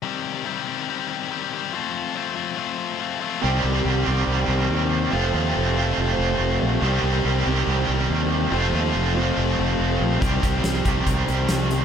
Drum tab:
HH |--------|--------|--------|--------|
SD |--------|--------|--------|--------|
BD |--------|--------|--------|--------|

HH |--------|--------|xxxxxxxx|
SD |--------|--------|-oo---o-|
BD |--------|--------|oo-oo---|